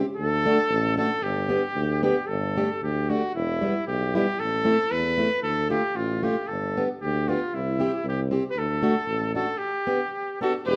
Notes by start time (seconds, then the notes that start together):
0.17 D2 A4
0.46 A3 D4 F#4
0.70 A1
0.97 A3 D4 F#4 A4
1.22 G1 G4
1.49 B3 D4 G4
1.76 D2
2.03 B3 D4 G4
2.28 G1 A4
2.57 A3 D4 G4
2.82 D2 G4
3.09 A3 D4 F#4 G4
3.35 E1 E4
3.62 G3 B3 E4
3.87 B1 G4
4.15 G3 B3 E4 G4
4.39 A1 A4
4.65 A3 C4 E4
4.91 E2 B4
5.18 A3 C4 E4
5.43 D2 A4
5.70 A3 D4 F4 G4
5.95 A1 F4
6.23 A3 D4 F4 G4
6.47 G1 A4
6.77 B3 D4 G4
7.01 D2 G4
7.28 B3 D4 F4 G4
7.54 C2 E4
7.79 C4 E4 G4
8.04 C2
8.08 G4
8.31 C4 E4 G4
8.51 B4
8.56 D2 A4
8.82 A3 D4 F#4
9.07 A1
9.35 A3 D4 F#4 A4
9.58 G4
9.87 B3 D4 G4
10.41 B3 D4 F#4 G4 A4
10.66 E1 G4 B4